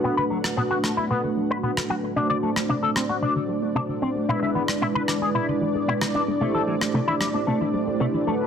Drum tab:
SD |---r--r------r--|---r--r---------|---r--r------r--|---r--r---------|